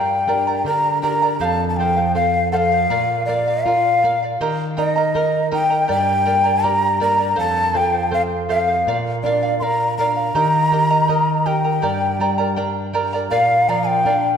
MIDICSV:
0, 0, Header, 1, 4, 480
1, 0, Start_track
1, 0, Key_signature, -2, "minor"
1, 0, Tempo, 748130
1, 900, Time_signature, 2, 2, 24, 8
1, 4736, Tempo, 741656
1, 9259, End_track
2, 0, Start_track
2, 0, Title_t, "Quena"
2, 0, Program_c, 0, 77
2, 0, Note_on_c, 0, 79, 83
2, 415, Note_off_c, 0, 79, 0
2, 427, Note_on_c, 0, 82, 99
2, 646, Note_off_c, 0, 82, 0
2, 659, Note_on_c, 0, 82, 94
2, 883, Note_off_c, 0, 82, 0
2, 896, Note_on_c, 0, 82, 92
2, 928, Note_on_c, 0, 81, 100
2, 934, Note_off_c, 0, 82, 0
2, 1080, Note_off_c, 0, 81, 0
2, 1087, Note_on_c, 0, 81, 60
2, 1133, Note_on_c, 0, 79, 92
2, 1143, Note_off_c, 0, 81, 0
2, 1377, Note_off_c, 0, 79, 0
2, 1382, Note_on_c, 0, 77, 90
2, 1605, Note_off_c, 0, 77, 0
2, 1616, Note_on_c, 0, 78, 84
2, 1648, Note_on_c, 0, 77, 92
2, 1654, Note_off_c, 0, 78, 0
2, 2073, Note_off_c, 0, 77, 0
2, 2090, Note_on_c, 0, 74, 79
2, 2334, Note_on_c, 0, 77, 90
2, 2343, Note_off_c, 0, 74, 0
2, 2697, Note_off_c, 0, 77, 0
2, 3070, Note_on_c, 0, 75, 85
2, 3519, Note_off_c, 0, 75, 0
2, 3552, Note_on_c, 0, 79, 98
2, 3769, Note_off_c, 0, 79, 0
2, 3795, Note_on_c, 0, 79, 106
2, 4261, Note_on_c, 0, 82, 103
2, 4271, Note_off_c, 0, 79, 0
2, 4498, Note_off_c, 0, 82, 0
2, 4506, Note_on_c, 0, 82, 102
2, 4724, Note_off_c, 0, 82, 0
2, 4745, Note_on_c, 0, 81, 108
2, 4986, Note_on_c, 0, 79, 96
2, 4996, Note_off_c, 0, 81, 0
2, 5222, Note_off_c, 0, 79, 0
2, 5227, Note_on_c, 0, 77, 92
2, 5280, Note_off_c, 0, 77, 0
2, 5462, Note_on_c, 0, 77, 84
2, 5747, Note_off_c, 0, 77, 0
2, 5935, Note_on_c, 0, 74, 85
2, 6161, Note_off_c, 0, 74, 0
2, 6168, Note_on_c, 0, 84, 95
2, 6191, Note_on_c, 0, 82, 103
2, 6197, Note_off_c, 0, 84, 0
2, 6397, Note_off_c, 0, 82, 0
2, 6416, Note_on_c, 0, 82, 104
2, 7377, Note_on_c, 0, 79, 82
2, 7386, Note_off_c, 0, 82, 0
2, 8097, Note_off_c, 0, 79, 0
2, 8572, Note_on_c, 0, 77, 98
2, 8820, Note_on_c, 0, 82, 90
2, 8829, Note_off_c, 0, 77, 0
2, 8933, Note_on_c, 0, 79, 93
2, 8943, Note_off_c, 0, 82, 0
2, 9259, Note_off_c, 0, 79, 0
2, 9259, End_track
3, 0, Start_track
3, 0, Title_t, "Charango"
3, 0, Program_c, 1, 24
3, 0, Note_on_c, 1, 67, 57
3, 0, Note_on_c, 1, 70, 68
3, 0, Note_on_c, 1, 74, 69
3, 0, Note_on_c, 1, 79, 66
3, 0, Note_on_c, 1, 82, 67
3, 168, Note_off_c, 1, 79, 0
3, 171, Note_off_c, 1, 70, 0
3, 176, Note_off_c, 1, 67, 0
3, 176, Note_off_c, 1, 74, 0
3, 176, Note_on_c, 1, 79, 57
3, 179, Note_on_c, 1, 70, 58
3, 180, Note_off_c, 1, 82, 0
3, 183, Note_on_c, 1, 74, 54
3, 187, Note_on_c, 1, 82, 57
3, 295, Note_off_c, 1, 82, 0
3, 297, Note_off_c, 1, 79, 0
3, 298, Note_off_c, 1, 70, 0
3, 301, Note_off_c, 1, 74, 0
3, 302, Note_on_c, 1, 82, 45
3, 308, Note_on_c, 1, 74, 44
3, 312, Note_on_c, 1, 70, 38
3, 418, Note_off_c, 1, 70, 0
3, 420, Note_off_c, 1, 82, 0
3, 423, Note_off_c, 1, 74, 0
3, 423, Note_on_c, 1, 79, 53
3, 426, Note_on_c, 1, 70, 54
3, 431, Note_on_c, 1, 74, 51
3, 432, Note_on_c, 1, 82, 56
3, 648, Note_off_c, 1, 79, 0
3, 654, Note_off_c, 1, 70, 0
3, 656, Note_on_c, 1, 79, 55
3, 657, Note_off_c, 1, 74, 0
3, 658, Note_off_c, 1, 82, 0
3, 661, Note_on_c, 1, 70, 61
3, 665, Note_on_c, 1, 74, 67
3, 666, Note_on_c, 1, 82, 69
3, 776, Note_off_c, 1, 82, 0
3, 778, Note_off_c, 1, 79, 0
3, 780, Note_off_c, 1, 70, 0
3, 782, Note_off_c, 1, 74, 0
3, 784, Note_on_c, 1, 82, 57
3, 791, Note_on_c, 1, 74, 51
3, 793, Note_on_c, 1, 70, 42
3, 898, Note_off_c, 1, 70, 0
3, 901, Note_on_c, 1, 69, 69
3, 902, Note_off_c, 1, 82, 0
3, 902, Note_on_c, 1, 72, 71
3, 905, Note_off_c, 1, 74, 0
3, 905, Note_on_c, 1, 77, 82
3, 1141, Note_off_c, 1, 69, 0
3, 1141, Note_off_c, 1, 72, 0
3, 1143, Note_off_c, 1, 77, 0
3, 1148, Note_on_c, 1, 69, 61
3, 1154, Note_on_c, 1, 72, 55
3, 1159, Note_on_c, 1, 77, 58
3, 1255, Note_off_c, 1, 77, 0
3, 1260, Note_off_c, 1, 72, 0
3, 1262, Note_on_c, 1, 77, 53
3, 1264, Note_off_c, 1, 69, 0
3, 1269, Note_on_c, 1, 72, 43
3, 1373, Note_off_c, 1, 72, 0
3, 1378, Note_off_c, 1, 77, 0
3, 1378, Note_on_c, 1, 69, 52
3, 1381, Note_on_c, 1, 72, 56
3, 1386, Note_on_c, 1, 77, 55
3, 1610, Note_off_c, 1, 69, 0
3, 1617, Note_off_c, 1, 72, 0
3, 1618, Note_on_c, 1, 69, 61
3, 1624, Note_off_c, 1, 77, 0
3, 1625, Note_on_c, 1, 72, 60
3, 1631, Note_on_c, 1, 77, 66
3, 1736, Note_off_c, 1, 77, 0
3, 1740, Note_off_c, 1, 69, 0
3, 1741, Note_off_c, 1, 72, 0
3, 1743, Note_on_c, 1, 77, 56
3, 1752, Note_on_c, 1, 72, 39
3, 1861, Note_off_c, 1, 77, 0
3, 1862, Note_on_c, 1, 70, 74
3, 1867, Note_off_c, 1, 72, 0
3, 1867, Note_on_c, 1, 74, 75
3, 1869, Note_on_c, 1, 77, 75
3, 2095, Note_off_c, 1, 70, 0
3, 2099, Note_off_c, 1, 74, 0
3, 2102, Note_on_c, 1, 70, 52
3, 2105, Note_off_c, 1, 77, 0
3, 2107, Note_on_c, 1, 74, 62
3, 2113, Note_on_c, 1, 77, 64
3, 2221, Note_off_c, 1, 77, 0
3, 2222, Note_off_c, 1, 70, 0
3, 2224, Note_off_c, 1, 74, 0
3, 2229, Note_on_c, 1, 77, 57
3, 2237, Note_on_c, 1, 74, 39
3, 2345, Note_off_c, 1, 77, 0
3, 2347, Note_off_c, 1, 74, 0
3, 2348, Note_on_c, 1, 70, 56
3, 2355, Note_on_c, 1, 74, 57
3, 2358, Note_on_c, 1, 77, 60
3, 2580, Note_off_c, 1, 70, 0
3, 2588, Note_off_c, 1, 74, 0
3, 2588, Note_on_c, 1, 70, 56
3, 2590, Note_off_c, 1, 77, 0
3, 2595, Note_on_c, 1, 74, 61
3, 2597, Note_on_c, 1, 77, 63
3, 2703, Note_off_c, 1, 77, 0
3, 2704, Note_off_c, 1, 70, 0
3, 2708, Note_off_c, 1, 74, 0
3, 2711, Note_on_c, 1, 77, 50
3, 2720, Note_on_c, 1, 74, 44
3, 2825, Note_off_c, 1, 74, 0
3, 2826, Note_off_c, 1, 77, 0
3, 2828, Note_on_c, 1, 67, 74
3, 2829, Note_on_c, 1, 79, 74
3, 2831, Note_on_c, 1, 75, 85
3, 2832, Note_on_c, 1, 70, 80
3, 2835, Note_on_c, 1, 82, 83
3, 3052, Note_off_c, 1, 79, 0
3, 3056, Note_off_c, 1, 70, 0
3, 3059, Note_on_c, 1, 79, 62
3, 3060, Note_off_c, 1, 75, 0
3, 3061, Note_off_c, 1, 82, 0
3, 3064, Note_off_c, 1, 67, 0
3, 3064, Note_on_c, 1, 70, 59
3, 3067, Note_on_c, 1, 75, 68
3, 3068, Note_on_c, 1, 82, 64
3, 3174, Note_off_c, 1, 82, 0
3, 3180, Note_off_c, 1, 79, 0
3, 3181, Note_on_c, 1, 82, 53
3, 3182, Note_off_c, 1, 70, 0
3, 3184, Note_off_c, 1, 75, 0
3, 3190, Note_on_c, 1, 75, 50
3, 3193, Note_on_c, 1, 70, 49
3, 3297, Note_off_c, 1, 75, 0
3, 3298, Note_off_c, 1, 70, 0
3, 3299, Note_on_c, 1, 79, 45
3, 3301, Note_off_c, 1, 82, 0
3, 3304, Note_on_c, 1, 75, 66
3, 3306, Note_on_c, 1, 70, 57
3, 3312, Note_on_c, 1, 82, 66
3, 3531, Note_off_c, 1, 70, 0
3, 3531, Note_off_c, 1, 79, 0
3, 3535, Note_off_c, 1, 75, 0
3, 3537, Note_off_c, 1, 82, 0
3, 3538, Note_on_c, 1, 70, 65
3, 3538, Note_on_c, 1, 79, 69
3, 3543, Note_on_c, 1, 75, 62
3, 3545, Note_on_c, 1, 82, 65
3, 3650, Note_off_c, 1, 82, 0
3, 3654, Note_off_c, 1, 75, 0
3, 3658, Note_on_c, 1, 82, 48
3, 3659, Note_off_c, 1, 70, 0
3, 3659, Note_off_c, 1, 79, 0
3, 3662, Note_on_c, 1, 75, 49
3, 3666, Note_on_c, 1, 70, 38
3, 3766, Note_off_c, 1, 70, 0
3, 3770, Note_on_c, 1, 67, 64
3, 3771, Note_off_c, 1, 82, 0
3, 3773, Note_on_c, 1, 79, 71
3, 3774, Note_on_c, 1, 70, 63
3, 3776, Note_off_c, 1, 75, 0
3, 3778, Note_on_c, 1, 82, 75
3, 3779, Note_on_c, 1, 74, 80
3, 4005, Note_off_c, 1, 79, 0
3, 4008, Note_off_c, 1, 70, 0
3, 4012, Note_off_c, 1, 74, 0
3, 4012, Note_on_c, 1, 79, 58
3, 4014, Note_off_c, 1, 67, 0
3, 4014, Note_off_c, 1, 82, 0
3, 4016, Note_on_c, 1, 70, 59
3, 4020, Note_on_c, 1, 74, 64
3, 4021, Note_on_c, 1, 82, 66
3, 4123, Note_off_c, 1, 82, 0
3, 4130, Note_off_c, 1, 74, 0
3, 4131, Note_on_c, 1, 82, 54
3, 4135, Note_off_c, 1, 79, 0
3, 4137, Note_off_c, 1, 70, 0
3, 4138, Note_on_c, 1, 74, 46
3, 4144, Note_on_c, 1, 70, 44
3, 4246, Note_off_c, 1, 70, 0
3, 4249, Note_on_c, 1, 79, 49
3, 4250, Note_off_c, 1, 74, 0
3, 4254, Note_off_c, 1, 82, 0
3, 4254, Note_on_c, 1, 70, 50
3, 4258, Note_on_c, 1, 74, 52
3, 4262, Note_on_c, 1, 82, 61
3, 4484, Note_off_c, 1, 79, 0
3, 4487, Note_off_c, 1, 70, 0
3, 4491, Note_off_c, 1, 74, 0
3, 4491, Note_on_c, 1, 79, 57
3, 4494, Note_off_c, 1, 82, 0
3, 4495, Note_on_c, 1, 70, 56
3, 4499, Note_on_c, 1, 74, 71
3, 4502, Note_on_c, 1, 82, 72
3, 4599, Note_off_c, 1, 82, 0
3, 4603, Note_off_c, 1, 74, 0
3, 4606, Note_off_c, 1, 70, 0
3, 4607, Note_on_c, 1, 82, 46
3, 4611, Note_on_c, 1, 74, 42
3, 4613, Note_off_c, 1, 79, 0
3, 4614, Note_on_c, 1, 70, 38
3, 4717, Note_off_c, 1, 70, 0
3, 4720, Note_on_c, 1, 69, 59
3, 4722, Note_on_c, 1, 72, 76
3, 4728, Note_on_c, 1, 77, 63
3, 4731, Note_off_c, 1, 82, 0
3, 4733, Note_off_c, 1, 74, 0
3, 4956, Note_off_c, 1, 69, 0
3, 4960, Note_off_c, 1, 72, 0
3, 4964, Note_on_c, 1, 69, 60
3, 4965, Note_off_c, 1, 77, 0
3, 4967, Note_on_c, 1, 72, 53
3, 4973, Note_on_c, 1, 77, 65
3, 5078, Note_off_c, 1, 77, 0
3, 5083, Note_off_c, 1, 72, 0
3, 5085, Note_on_c, 1, 77, 52
3, 5091, Note_off_c, 1, 69, 0
3, 5098, Note_on_c, 1, 72, 42
3, 5202, Note_off_c, 1, 72, 0
3, 5204, Note_on_c, 1, 69, 52
3, 5207, Note_off_c, 1, 77, 0
3, 5210, Note_on_c, 1, 72, 63
3, 5216, Note_on_c, 1, 77, 61
3, 5444, Note_off_c, 1, 69, 0
3, 5448, Note_off_c, 1, 72, 0
3, 5452, Note_off_c, 1, 77, 0
3, 5452, Note_on_c, 1, 69, 58
3, 5456, Note_on_c, 1, 72, 59
3, 5460, Note_on_c, 1, 77, 78
3, 5567, Note_off_c, 1, 77, 0
3, 5572, Note_off_c, 1, 72, 0
3, 5575, Note_off_c, 1, 69, 0
3, 5575, Note_on_c, 1, 77, 47
3, 5582, Note_on_c, 1, 72, 36
3, 5697, Note_off_c, 1, 77, 0
3, 5700, Note_off_c, 1, 72, 0
3, 5705, Note_on_c, 1, 70, 66
3, 5705, Note_on_c, 1, 74, 76
3, 5707, Note_on_c, 1, 77, 83
3, 5935, Note_off_c, 1, 70, 0
3, 5942, Note_off_c, 1, 74, 0
3, 5943, Note_off_c, 1, 77, 0
3, 5943, Note_on_c, 1, 70, 50
3, 5950, Note_on_c, 1, 74, 61
3, 5953, Note_on_c, 1, 77, 70
3, 6051, Note_off_c, 1, 77, 0
3, 6059, Note_on_c, 1, 77, 60
3, 6061, Note_off_c, 1, 70, 0
3, 6063, Note_off_c, 1, 74, 0
3, 6070, Note_on_c, 1, 74, 44
3, 6179, Note_off_c, 1, 77, 0
3, 6182, Note_off_c, 1, 74, 0
3, 6186, Note_on_c, 1, 70, 52
3, 6190, Note_on_c, 1, 74, 59
3, 6193, Note_on_c, 1, 77, 57
3, 6417, Note_off_c, 1, 70, 0
3, 6425, Note_off_c, 1, 74, 0
3, 6425, Note_off_c, 1, 77, 0
3, 6425, Note_on_c, 1, 70, 59
3, 6432, Note_on_c, 1, 74, 70
3, 6433, Note_on_c, 1, 77, 66
3, 6530, Note_off_c, 1, 77, 0
3, 6537, Note_on_c, 1, 77, 51
3, 6543, Note_off_c, 1, 70, 0
3, 6544, Note_off_c, 1, 74, 0
3, 6551, Note_on_c, 1, 74, 39
3, 6655, Note_off_c, 1, 74, 0
3, 6655, Note_off_c, 1, 77, 0
3, 6657, Note_on_c, 1, 67, 67
3, 6658, Note_on_c, 1, 79, 70
3, 6660, Note_on_c, 1, 70, 69
3, 6662, Note_on_c, 1, 75, 77
3, 6663, Note_on_c, 1, 82, 85
3, 6888, Note_off_c, 1, 79, 0
3, 6893, Note_off_c, 1, 70, 0
3, 6896, Note_on_c, 1, 79, 50
3, 6897, Note_off_c, 1, 75, 0
3, 6898, Note_off_c, 1, 82, 0
3, 6899, Note_off_c, 1, 67, 0
3, 6901, Note_on_c, 1, 70, 56
3, 6904, Note_on_c, 1, 75, 60
3, 6906, Note_on_c, 1, 82, 64
3, 7008, Note_off_c, 1, 82, 0
3, 7010, Note_off_c, 1, 75, 0
3, 7014, Note_off_c, 1, 70, 0
3, 7016, Note_on_c, 1, 82, 60
3, 7017, Note_on_c, 1, 75, 65
3, 7018, Note_off_c, 1, 79, 0
3, 7022, Note_on_c, 1, 70, 50
3, 7131, Note_on_c, 1, 79, 57
3, 7132, Note_off_c, 1, 70, 0
3, 7132, Note_off_c, 1, 75, 0
3, 7134, Note_off_c, 1, 82, 0
3, 7139, Note_on_c, 1, 70, 66
3, 7140, Note_on_c, 1, 75, 68
3, 7142, Note_on_c, 1, 82, 68
3, 7366, Note_off_c, 1, 79, 0
3, 7368, Note_off_c, 1, 70, 0
3, 7372, Note_off_c, 1, 75, 0
3, 7374, Note_on_c, 1, 79, 55
3, 7376, Note_off_c, 1, 82, 0
3, 7376, Note_on_c, 1, 70, 65
3, 7379, Note_on_c, 1, 75, 68
3, 7383, Note_on_c, 1, 82, 68
3, 7487, Note_off_c, 1, 82, 0
3, 7490, Note_off_c, 1, 75, 0
3, 7495, Note_on_c, 1, 82, 44
3, 7497, Note_off_c, 1, 79, 0
3, 7498, Note_off_c, 1, 70, 0
3, 7498, Note_on_c, 1, 75, 49
3, 7504, Note_on_c, 1, 70, 40
3, 7603, Note_off_c, 1, 70, 0
3, 7608, Note_on_c, 1, 67, 75
3, 7609, Note_off_c, 1, 82, 0
3, 7611, Note_on_c, 1, 70, 66
3, 7613, Note_off_c, 1, 75, 0
3, 7614, Note_on_c, 1, 79, 67
3, 7615, Note_on_c, 1, 74, 75
3, 7617, Note_on_c, 1, 82, 74
3, 7848, Note_off_c, 1, 79, 0
3, 7851, Note_off_c, 1, 74, 0
3, 7852, Note_off_c, 1, 70, 0
3, 7853, Note_off_c, 1, 67, 0
3, 7854, Note_off_c, 1, 82, 0
3, 7856, Note_on_c, 1, 79, 57
3, 7859, Note_on_c, 1, 70, 50
3, 7859, Note_on_c, 1, 74, 66
3, 7862, Note_on_c, 1, 82, 70
3, 7963, Note_off_c, 1, 82, 0
3, 7967, Note_off_c, 1, 74, 0
3, 7971, Note_on_c, 1, 82, 58
3, 7973, Note_off_c, 1, 70, 0
3, 7974, Note_on_c, 1, 74, 52
3, 7977, Note_off_c, 1, 79, 0
3, 7981, Note_on_c, 1, 70, 49
3, 8086, Note_off_c, 1, 70, 0
3, 8088, Note_off_c, 1, 74, 0
3, 8089, Note_on_c, 1, 79, 65
3, 8090, Note_off_c, 1, 82, 0
3, 8094, Note_on_c, 1, 70, 61
3, 8096, Note_on_c, 1, 74, 65
3, 8097, Note_on_c, 1, 82, 65
3, 8322, Note_off_c, 1, 79, 0
3, 8328, Note_off_c, 1, 70, 0
3, 8328, Note_off_c, 1, 74, 0
3, 8330, Note_on_c, 1, 79, 71
3, 8332, Note_off_c, 1, 82, 0
3, 8336, Note_on_c, 1, 70, 68
3, 8336, Note_on_c, 1, 74, 71
3, 8339, Note_on_c, 1, 82, 74
3, 8449, Note_off_c, 1, 82, 0
3, 8454, Note_off_c, 1, 79, 0
3, 8457, Note_off_c, 1, 70, 0
3, 8457, Note_off_c, 1, 74, 0
3, 8457, Note_on_c, 1, 82, 56
3, 8463, Note_on_c, 1, 74, 52
3, 8470, Note_on_c, 1, 70, 44
3, 8566, Note_off_c, 1, 70, 0
3, 8567, Note_off_c, 1, 74, 0
3, 8573, Note_on_c, 1, 70, 71
3, 8575, Note_on_c, 1, 74, 78
3, 8577, Note_off_c, 1, 82, 0
3, 8581, Note_on_c, 1, 77, 82
3, 8811, Note_off_c, 1, 70, 0
3, 8814, Note_off_c, 1, 74, 0
3, 8819, Note_off_c, 1, 77, 0
3, 8819, Note_on_c, 1, 70, 59
3, 8822, Note_on_c, 1, 74, 69
3, 8829, Note_on_c, 1, 77, 64
3, 8925, Note_off_c, 1, 77, 0
3, 8933, Note_on_c, 1, 77, 54
3, 8936, Note_off_c, 1, 74, 0
3, 8938, Note_off_c, 1, 70, 0
3, 8943, Note_on_c, 1, 74, 42
3, 9051, Note_off_c, 1, 74, 0
3, 9055, Note_off_c, 1, 77, 0
3, 9055, Note_on_c, 1, 70, 54
3, 9059, Note_on_c, 1, 74, 61
3, 9062, Note_on_c, 1, 77, 72
3, 9259, Note_off_c, 1, 70, 0
3, 9259, Note_off_c, 1, 74, 0
3, 9259, Note_off_c, 1, 77, 0
3, 9259, End_track
4, 0, Start_track
4, 0, Title_t, "Nylon-string guitar"
4, 0, Program_c, 2, 24
4, 0, Note_on_c, 2, 43, 59
4, 177, Note_on_c, 2, 62, 50
4, 180, Note_on_c, 2, 70, 48
4, 181, Note_on_c, 2, 67, 40
4, 405, Note_off_c, 2, 43, 0
4, 414, Note_on_c, 2, 50, 61
4, 562, Note_off_c, 2, 62, 0
4, 564, Note_off_c, 2, 67, 0
4, 564, Note_off_c, 2, 70, 0
4, 659, Note_on_c, 2, 62, 43
4, 662, Note_on_c, 2, 67, 40
4, 663, Note_on_c, 2, 70, 50
4, 851, Note_off_c, 2, 62, 0
4, 853, Note_off_c, 2, 67, 0
4, 854, Note_off_c, 2, 70, 0
4, 883, Note_off_c, 2, 50, 0
4, 897, Note_on_c, 2, 41, 69
4, 1144, Note_on_c, 2, 53, 58
4, 1375, Note_off_c, 2, 53, 0
4, 1379, Note_on_c, 2, 60, 56
4, 1613, Note_off_c, 2, 60, 0
4, 1626, Note_on_c, 2, 53, 53
4, 1835, Note_off_c, 2, 41, 0
4, 1857, Note_off_c, 2, 53, 0
4, 1862, Note_on_c, 2, 46, 71
4, 2110, Note_on_c, 2, 58, 54
4, 2339, Note_off_c, 2, 58, 0
4, 2346, Note_on_c, 2, 65, 59
4, 2576, Note_off_c, 2, 65, 0
4, 2591, Note_on_c, 2, 58, 51
4, 2796, Note_off_c, 2, 46, 0
4, 2819, Note_off_c, 2, 58, 0
4, 2827, Note_on_c, 2, 51, 66
4, 3067, Note_on_c, 2, 63, 52
4, 3296, Note_off_c, 2, 63, 0
4, 3304, Note_on_c, 2, 70, 59
4, 3535, Note_off_c, 2, 70, 0
4, 3546, Note_on_c, 2, 63, 50
4, 3756, Note_off_c, 2, 51, 0
4, 3775, Note_off_c, 2, 63, 0
4, 3781, Note_on_c, 2, 43, 70
4, 4028, Note_on_c, 2, 58, 53
4, 4255, Note_off_c, 2, 58, 0
4, 4262, Note_on_c, 2, 67, 57
4, 4492, Note_off_c, 2, 67, 0
4, 4502, Note_on_c, 2, 58, 53
4, 4711, Note_off_c, 2, 43, 0
4, 4731, Note_off_c, 2, 58, 0
4, 4735, Note_on_c, 2, 41, 67
4, 4975, Note_on_c, 2, 53, 49
4, 5209, Note_off_c, 2, 53, 0
4, 5214, Note_on_c, 2, 60, 56
4, 5449, Note_off_c, 2, 60, 0
4, 5456, Note_on_c, 2, 53, 50
4, 5672, Note_off_c, 2, 41, 0
4, 5690, Note_off_c, 2, 53, 0
4, 5700, Note_on_c, 2, 46, 73
4, 5937, Note_on_c, 2, 62, 59
4, 6171, Note_off_c, 2, 62, 0
4, 6179, Note_on_c, 2, 70, 53
4, 6413, Note_off_c, 2, 70, 0
4, 6422, Note_on_c, 2, 62, 51
4, 6635, Note_off_c, 2, 46, 0
4, 6654, Note_off_c, 2, 62, 0
4, 6656, Note_on_c, 2, 51, 71
4, 6896, Note_on_c, 2, 67, 55
4, 7131, Note_off_c, 2, 67, 0
4, 7137, Note_on_c, 2, 75, 57
4, 7371, Note_off_c, 2, 75, 0
4, 7377, Note_on_c, 2, 67, 51
4, 7592, Note_off_c, 2, 51, 0
4, 7611, Note_off_c, 2, 67, 0
4, 7614, Note_on_c, 2, 43, 77
4, 7853, Note_on_c, 2, 55, 53
4, 8088, Note_off_c, 2, 55, 0
4, 8096, Note_on_c, 2, 62, 57
4, 8330, Note_off_c, 2, 62, 0
4, 8331, Note_on_c, 2, 55, 47
4, 8549, Note_off_c, 2, 43, 0
4, 8567, Note_off_c, 2, 55, 0
4, 8575, Note_on_c, 2, 46, 69
4, 8817, Note_on_c, 2, 53, 56
4, 9049, Note_off_c, 2, 53, 0
4, 9053, Note_on_c, 2, 62, 60
4, 9259, Note_off_c, 2, 46, 0
4, 9259, Note_off_c, 2, 62, 0
4, 9259, End_track
0, 0, End_of_file